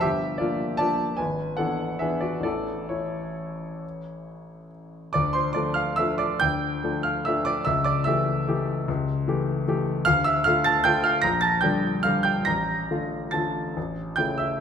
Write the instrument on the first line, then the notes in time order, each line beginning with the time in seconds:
grand piano
0.01 G1 G4 E5
0.38 F3 A#3 D4 F4 D5
0.77 F3 A#3 D4 D5 A5
1.17 G#1 B4 G#5
1.57 E3 B3 D4 A4 F#5
1.99 E3 B3 D4 G#4 E5
2.21 F#4 D5
2.41 A1 E3 A3 E4 A4 D5
2.89 E4 C#5
5.13 D2 D5 D6
5.33 C5 C6
5.53 F3 A3 D4 D5 D6
5.74 F5 F6
5.96 F3 A3 D4 E5 E6
6.18 D5 D6
6.40 D2 G5 G6
6.84 F3 A3 D4
7.03 F5 F6
7.25 F3 A3 D4 E5 E6
7.45 D5 D6
7.65 C#2 E5 E6
7.84 D5 D6
8.04 E3 A3 G4 E5 E6
8.48 E3 A3 G4
8.88 C#2
9.27 E3 A3 G4
9.68 E3 A3 G4
10.05 D2 F5 F6
10.24 E5 E6
10.44 D3 A3 F4 F5 F6
10.64 A5 A6
10.84 D3 A3 F4 G5 G6
11.04 F5 F6
11.22 A#1 A#5 A#6
11.41 A5 A6
11.61 D3 G3 D4 G5 G6
12.03 D3 G3 D4 F5 F6
12.23 G5 G6
12.45 A1 A#5 A#6
12.91 D3 A3 F4
13.31 D3 A3 F4 A5 A6
13.77 A1
14.16 C#3 A3 E4 G5 G6
14.38 E5 E6